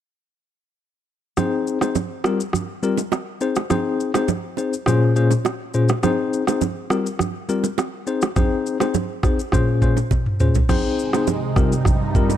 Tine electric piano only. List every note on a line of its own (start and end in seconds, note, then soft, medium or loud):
1.37 1.78 C4 medium
1.37 1.78 D#4 medium
1.37 1.78 G#4 medium
1.37 1.78 C5 medium
1.81 1.96 C4 medium
1.81 1.96 D#4 medium
1.81 1.96 G#4 medium
1.81 1.96 C5 medium
2.24 2.40 G3 medium
2.24 2.40 C4 medium
2.24 2.41 F4 medium
2.24 2.41 G4 medium
2.24 2.41 A#4 medium
2.83 2.99 G3 medium
2.83 2.99 C4 medium
2.83 2.99 F4 medium
2.83 2.99 G4 medium
2.83 2.99 A#4 medium
3.41 3.57 C4 medium
3.41 3.57 D#4 medium
3.41 3.57 G#4 medium
3.41 3.57 C5 medium
3.70 4.11 C4 medium
3.70 4.11 D#4 medium
3.70 4.11 G#4 medium
3.70 4.11 C5 loud
4.14 4.29 C4 medium
4.14 4.29 D#4 medium
4.14 4.29 G#4 medium
4.14 4.29 C5 medium
4.57 4.73 C4 medium
4.57 4.73 D#4 medium
4.57 4.74 G#4 medium
4.57 4.74 C5 medium
4.87 5.14 A#2 medium
4.87 5.14 C#4 medium
4.87 5.14 F4 medium
4.87 5.14 G#4 medium
4.87 5.14 C5 loud
5.16 5.32 A#2 medium
5.16 5.32 C#4 medium
5.16 5.32 F4 medium
5.16 5.32 G#4 medium
5.16 5.32 C5 medium
5.74 5.90 A#2 medium
5.74 5.90 C#4 medium
5.74 5.90 F4 medium
5.74 5.90 G#4 medium
5.74 5.90 C5 medium
6.03 6.44 C4 medium
6.03 6.44 D#4 medium
6.03 6.44 G#4 medium
6.03 6.44 C5 loud
6.47 6.62 C4 medium
6.47 6.62 D#4 medium
6.47 6.62 G#4 medium
6.47 6.62 C5 medium
6.90 7.06 G3 medium
6.90 7.06 C4 medium
6.90 7.07 F4 medium
6.90 7.07 G4 medium
6.90 7.07 A#4 medium
7.49 7.65 G3 medium
7.49 7.65 C4 medium
7.49 7.65 F4 medium
7.49 7.65 G4 medium
7.49 7.65 A#4 medium
8.07 8.23 C4 medium
8.07 8.23 D#4 medium
8.07 8.23 G#4 medium
8.07 8.23 C5 medium
8.36 8.77 C4 medium
8.36 8.77 D#4 medium
8.36 8.77 G#4 medium
8.36 8.77 C5 loud
8.80 8.95 C4 medium
8.80 8.95 D#4 medium
8.80 8.95 G#4 medium
8.80 8.95 C5 medium
9.24 9.39 C4 medium
9.24 9.39 D#4 medium
9.24 9.40 G#4 medium
9.24 9.40 C5 medium
9.53 9.80 A#2 medium
9.53 9.80 C#4 medium
9.53 9.80 F4 medium
9.53 9.80 G#4 medium
9.53 9.80 C5 loud
9.82 9.98 A#2 medium
9.82 9.98 C#4 medium
9.82 9.98 F4 medium
9.82 9.98 G#4 medium
9.82 9.98 C5 medium
10.40 10.56 A#2 medium
10.40 10.56 C#4 medium
10.40 10.56 F4 medium
10.40 10.56 G#4 medium
10.40 10.56 C5 medium
10.69 11.10 C4 medium
10.69 11.10 D#4 medium
10.69 11.10 G#4 medium
10.69 11.10 C5 loud
11.13 11.28 C4 medium
11.13 11.28 D#4 medium
11.13 11.28 G#4 medium
11.13 11.29 C5 medium
11.56 11.72 G3 medium
11.56 11.72 C4 medium
11.56 11.73 F4 medium
11.56 11.73 G4 medium
11.56 11.73 A#4 medium
12.15 12.31 G3 medium
12.15 12.31 C4 medium
12.15 12.31 F4 medium
12.15 12.31 G4 medium
12.15 12.31 A#4 medium